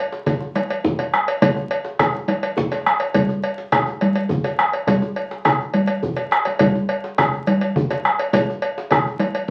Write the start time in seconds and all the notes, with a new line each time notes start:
0.12 djembe slap
0.26 bombo low, cowbell, high conga, low conga, djembe bass
0.41 djembe tone, high conga
0.56 bombo rim, cowbell, high conga
0.70 cowbell, djembe slap
0.84 bombo low, djembe bass, low conga
0.99 cowbell, djembe slap, djembe tone, high conga
1.14 bombo rim, high conga
1.28 cowbell, djembe slap
1.42 bombo low, cowbell, high conga, low conga, djembe bass
1.56 djembe slap, djembe tone
1.71 cowbell
1.85 djembe slap
1.99 bombo rim, bombo low, cowbell, high conga, low conga, djembe bass
2.14 djembe tone, high conga
2.28 bombo rim, cowbell, high conga
2.43 cowbell, djembe slap
2.57 bombo low, djembe bass, low conga
2.72 cowbell, djembe slap, high conga, djembe tone
2.86 bombo rim, high conga
3.00 cowbell, djembe slap
3.14 bombo low, cowbell, high conga, djembe bass, low conga
3.29 djembe slap, djembe tone
3.44 cowbell
3.58 djembe slap
3.72 bombo rim, bombo low, cowbell, high conga, djembe bass, low conga
3.86 djembe tone, high conga
4.01 bombo rim, cowbell, high conga
4.15 cowbell, djembe slap
4.29 bombo low, djembe bass, low conga
4.44 cowbell, djembe slap, djembe tone, high conga
4.59 bombo rim, high conga
4.73 cowbell, djembe slap
4.87 bombo rim, bombo low, cowbell, high conga, djembe bass, low conga
5.02 djembe slap, djembe tone, high conga
5.16 cowbell, high conga
5.31 bombo rim, djembe slap
5.45 bombo rim, bombo low, cowbell, low conga, djembe bass
5.60 djembe slap, high conga, djembe tone
5.74 cowbell, high conga
5.87 cowbell, high conga
6.03 bombo low, djembe bass
6.16 cowbell, djembe bass
6.31 bombo rim, djembe slap
6.45 cowbell, djembe slap, high conga
6.59 bombo low, cowbell, high conga, djembe bass, low conga
6.75 djembe slap, djembe tone
6.89 cowbell
7.04 djembe slap
7.18 bombo rim, bombo low, cowbell, high conga, low conga, djembe bass
7.33 high conga, djembe tone
7.47 bombo rim, cowbell, high conga
7.61 cowbell, djembe slap
7.76 bombo low, low conga, djembe bass
7.90 cowbell, djembe slap, high conga, djembe tone
8.04 bombo rim, high conga
8.19 cowbell, djembe slap
8.33 bombo low, cowbell, high conga, low conga, djembe bass
8.50 djembe slap, djembe tone
8.62 cowbell
8.78 djembe slap
8.91 bombo rim, bombo low, cowbell, high conga, low conga, djembe bass
9.05 high conga, djembe tone
9.19 bombo rim, cowbell, high conga
9.35 cowbell, djembe slap